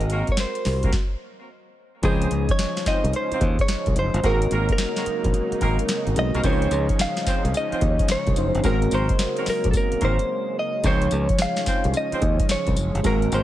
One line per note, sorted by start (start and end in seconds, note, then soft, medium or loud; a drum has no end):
0.00 0.22 G#1 loud
0.00 0.91 G#3 medium
0.00 0.95 C4 medium
0.00 0.92 F#4 medium
0.00 0.92 A#4 medium
0.00 0.27 D#5 loud
0.00 closed hi-hat medium
0.10 0.28 A#3 medium
0.10 0.28 C4 medium
0.10 0.28 F#4 medium
0.10 0.28 A#4 medium
0.10 closed hi-hat medium
0.27 kick medium
0.27 closed hi-hat medium
0.32 0.40 C#5 medium
0.37 0.91 C5 medium
0.37 snare loud
0.37 closed hi-hat medium
0.55 closed hi-hat medium
0.65 0.89 C2 medium
0.65 snare medium
0.65 open hi-hat medium
0.83 0.93 A#3 medium
0.83 0.93 C4 medium
0.83 0.93 F#4 medium
0.83 0.93 A#4 medium
0.83 kick medium
0.83 closed hi-hat medium
0.93 kick loud
0.93 snare medium
2.02 2.27 C#2 loud
2.02 10.80 C#3 medium
2.02 4.19 F3 medium
2.02 4.21 F3 medium
2.02 6.40 G#3 medium
2.02 2.30 C4 loud
2.02 4.21 C#4 medium
2.02 4.20 C#4 medium
2.02 2.29 D#4 medium
2.02 13.00 D#4 medium
2.02 4.20 D#4 medium
2.02 2.29 F4 medium
2.02 2.51 G#4 medium
2.02 2.30 C5 loud
2.02 4.20 D#5 medium
2.02 kick loud
2.02 closed hi-hat medium
2.22 closed hi-hat medium
2.31 2.46 C#2 medium
2.31 closed hi-hat medium
2.49 2.85 C#5 medium
2.49 kick loud
2.49 closed hi-hat medium
2.59 snare loud
2.59 closed hi-hat medium
2.77 snare medium
2.77 closed hi-hat medium
2.86 3.03 C4 medium
2.86 3.03 D#4 medium
2.86 3.03 F4 medium
2.86 3.03 C5 medium
2.86 3.15 D#5 medium
2.86 muted fingered electric bass stroke soft
2.86 kick medium
2.86 snare medium
2.86 closed hi-hat medium
3.04 3.12 C2 medium
3.04 closed hi-hat medium
3.13 3.57 C5 medium
3.13 closed hi-hat medium
3.32 3.41 C4 medium
3.32 3.41 D#4 medium
3.32 3.41 F4 medium
3.32 3.41 C5 medium
3.32 muted fingered electric bass stroke soft
3.32 closed hi-hat soft
3.41 3.56 D#2 medium
3.41 kick medium
3.41 closed hi-hat medium
3.59 3.98 C#5 medium
3.59 kick loud
3.59 closed hi-hat medium
3.68 snare loud
3.68 closed hi-hat medium
3.86 3.95 C2 medium
3.86 kick medium
3.86 closed hi-hat medium
3.96 4.11 F#1 medium
3.96 4.26 C5 loud
3.96 closed hi-hat medium
4.14 4.22 G1 loud
4.14 closed hi-hat medium
4.23 4.47 G#1 loud
4.23 6.42 F#3 medium
4.23 6.12 G#3 medium
4.23 4.41 A#3 medium
4.23 6.42 A#3 medium
4.23 4.41 C4 medium
4.23 6.13 C4 medium
4.23 4.41 F#4 medium
4.23 6.13 F#4 medium
4.23 4.41 A#4 loud
4.23 6.14 A#4 medium
4.23 4.71 A#4 medium
4.23 kick loud
4.23 closed hi-hat medium
4.42 closed hi-hat medium
4.51 4.67 G#1 loud
4.51 4.68 A#3 medium
4.51 4.68 C4 medium
4.51 4.68 F#4 medium
4.51 4.68 A#4 medium
4.51 closed hi-hat medium
4.69 6.22 A#4 loud
4.69 kick medium
4.69 closed hi-hat medium
4.78 snare loud
4.78 closed hi-hat medium
4.96 5.06 A#3 medium
4.96 5.05 C4 medium
4.96 5.06 F#4 medium
4.96 5.06 A#4 medium
4.96 snare medium
4.96 closed hi-hat medium
5.06 muted fingered electric bass stroke soft
5.06 closed hi-hat medium
5.24 5.32 A#1 medium
5.24 kick loud
5.24 closed hi-hat medium
5.34 closed hi-hat medium
5.52 muted fingered electric bass stroke soft
5.52 closed hi-hat medium
5.61 5.77 G#1 loud
5.61 5.78 A#3 medium
5.61 5.78 C4 medium
5.61 5.78 F#4 medium
5.61 5.78 A#4 loud
5.61 kick medium
5.61 closed hi-hat medium
5.79 closed hi-hat medium
5.88 snare loud
5.88 closed hi-hat medium
6.07 6.15 G#1 medium
6.07 closed hi-hat soft
6.16 6.31 B1 medium
6.16 6.44 G#3 medium
6.16 6.44 C4 soft
6.16 6.45 F#4 soft
6.16 6.45 A#4 medium
6.16 6.43 D#5 loud
6.16 closed hi-hat medium
6.34 6.43 C2 medium
6.34 6.43 A#3 medium
6.34 6.43 C4 medium
6.34 6.43 F#4 medium
6.34 6.43 A#4 medium
6.34 closed hi-hat medium
6.43 6.67 C#2 loud
6.43 8.33 F3 medium
6.43 8.62 F3 medium
6.43 8.62 G#3 medium
6.43 6.70 C4 medium
6.43 8.62 C#4 medium
6.43 8.33 C#4 medium
6.43 6.70 D#4 loud
6.43 8.33 D#4 medium
6.43 6.70 F4 medium
6.43 6.53 A#4 medium
6.43 6.70 C5 loud
6.43 7.01 C#5 loud
6.43 kick loud
6.43 closed hi-hat medium
6.43 tambourine medium
6.53 8.37 C#5 medium
6.62 closed hi-hat medium
6.71 6.86 C#2 loud
6.71 closed hi-hat medium
6.71 tambourine medium
6.89 kick medium
6.89 closed hi-hat medium
6.99 7.57 F5 loud
6.99 snare loud
6.99 closed hi-hat medium
6.99 tambourine medium
7.17 snare medium
7.17 closed hi-hat medium
7.26 7.44 C4 medium
7.26 7.43 D#4 medium
7.26 7.43 F4 medium
7.26 7.44 C5 medium
7.26 muted fingered electric bass stroke soft
7.26 kick medium
7.26 snare medium
7.26 closed hi-hat medium
7.26 tambourine medium
7.45 7.53 C2 medium
7.45 closed hi-hat medium
7.54 8.11 D#5 loud
7.54 closed hi-hat medium
7.54 tambourine medium
7.71 7.81 C4 medium
7.71 7.81 D#4 medium
7.71 7.81 F4 medium
7.71 7.81 C5 medium
7.71 muted fingered electric bass stroke soft
7.71 closed hi-hat medium
7.81 7.97 D#2 medium
7.81 kick medium
7.81 closed hi-hat medium
7.99 kick loud
7.99 closed hi-hat medium
8.08 8.48 C#5 medium
8.08 snare loud
8.08 closed hi-hat medium
8.08 tambourine medium
8.27 8.35 C2 medium
8.27 kick loud
8.27 closed hi-hat medium
8.36 8.52 F#1 medium
8.36 8.64 F3 soft
8.36 8.65 C#4 soft
8.36 8.65 D#4 soft
8.36 8.65 C5 medium
8.36 closed hi-hat medium
8.36 tambourine medium
8.48 8.62 C5 medium
8.55 8.63 G1 medium
8.55 closed hi-hat medium
8.63 8.87 G#1 loud
8.63 10.82 F#3 medium
8.63 10.80 G#3 medium
8.63 13.43 G#3 medium
8.63 8.81 A#3 medium
8.63 10.82 A#3 medium
8.63 8.81 C4 medium
8.63 10.81 C4 medium
8.63 8.81 F#4 medium
8.63 10.81 F#4 medium
8.63 8.81 A#4 loud
8.63 8.94 A#4 loud
8.63 10.82 A#4 medium
8.63 kick loud
8.63 closed hi-hat medium
8.63 tambourine medium
8.82 closed hi-hat medium
8.91 9.07 G#1 loud
8.91 9.09 A#3 medium
8.91 9.08 C4 medium
8.91 9.08 F#4 medium
8.91 9.09 A#4 medium
8.91 9.50 C5 loud
8.91 closed hi-hat medium
8.91 tambourine medium
9.09 kick loud
9.09 closed hi-hat medium
9.19 snare loud
9.19 closed hi-hat medium
9.19 tambourine loud
9.36 9.46 A#3 medium
9.36 9.46 C4 medium
9.36 9.46 F#4 medium
9.36 9.46 A#4 medium
9.36 closed hi-hat medium
9.46 9.69 A#4 loud
9.46 muted fingered electric bass stroke soft
9.46 snare medium
9.46 open hi-hat medium
9.46 tambourine medium
9.64 9.73 A#1 medium
9.64 kick loud
9.64 closed hi-hat medium
9.71 9.75 A4 medium
9.71 kick medium
9.71 closed hi-hat medium
9.71 tambourine medium
9.77 10.01 A#4 medium
9.92 muted fingered electric bass stroke soft
9.92 closed hi-hat medium
10.01 10.17 G#1 loud
10.01 10.19 A#3 medium
10.01 10.18 C4 medium
10.01 10.19 F#4 medium
10.01 10.19 A#4 medium
10.01 10.59 C5 loud
10.01 kick medium
10.01 closed hi-hat medium
10.19 closed hi-hat medium
10.59 10.86 D#5 medium
10.83 11.07 C#2 loud
10.83 13.43 C#3 medium
10.83 13.02 F3 medium
10.83 13.00 F3 medium
10.83 11.10 C4 loud
10.83 13.02 C#4 medium
10.83 13.01 C#4 medium
10.83 11.10 D#4 medium
10.83 13.01 D#4 medium
10.83 11.10 F4 medium
10.83 11.10 C5 loud
10.83 13.01 C#5 medium
10.83 11.42 C#5 loud
10.83 kick loud
10.83 closed hi-hat medium
10.83 tambourine medium
11.02 closed hi-hat medium
11.11 11.27 C#2 loud
11.11 closed hi-hat medium
11.11 tambourine medium
11.29 kick medium
11.29 closed hi-hat medium
11.38 11.97 F5 loud
11.38 snare loud
11.38 closed hi-hat medium
11.38 tambourine loud
11.56 snare medium
11.56 closed hi-hat medium
11.66 11.84 C4 medium
11.66 11.84 D#4 medium
11.66 11.84 F4 medium
11.66 11.84 C5 medium
11.66 muted fingered electric bass stroke soft
11.66 kick medium
11.66 snare medium
11.66 closed hi-hat medium
11.66 tambourine medium
11.84 11.93 C2 medium
11.84 closed hi-hat medium
11.94 12.47 D#5 loud
11.94 closed hi-hat medium
11.94 tambourine medium
12.11 12.21 C4 medium
12.11 12.21 D#4 medium
12.11 12.21 F4 medium
12.11 12.21 C5 medium
12.11 muted fingered electric bass stroke soft
12.11 closed hi-hat medium
12.22 12.37 D#2 loud
12.22 kick medium
12.22 closed hi-hat medium
12.39 kick loud
12.39 closed hi-hat medium
12.49 13.02 C#5 medium
12.49 snare loud
12.49 closed hi-hat medium
12.49 tambourine medium
12.67 12.75 C2 medium
12.67 kick medium
12.67 closed hi-hat soft
12.76 12.92 F#1 medium
12.76 closed hi-hat medium
12.76 tambourine medium
12.95 13.03 G1 medium
12.95 closed hi-hat medium
13.03 13.28 G#1 loud
13.03 13.43 F#3 medium
13.03 13.43 G#3 medium
13.03 13.43 A#3 medium
13.03 13.22 A#3 medium
13.03 13.21 C4 medium
13.03 13.43 C4 medium
13.03 13.43 D#4 medium
13.03 13.21 F#4 medium
13.03 13.43 F#4 medium
13.03 13.22 A#4 loud
13.03 13.43 A#4 medium
13.03 13.34 A#4 loud
13.03 kick loud
13.03 closed hi-hat medium
13.03 tambourine medium
13.22 closed hi-hat medium
13.31 13.43 G#1 loud
13.31 13.43 A#3 medium
13.31 13.43 C4 medium
13.31 13.43 F#4 medium
13.31 13.43 A#4 medium
13.31 13.43 C5 loud
13.31 closed hi-hat medium
13.31 tambourine medium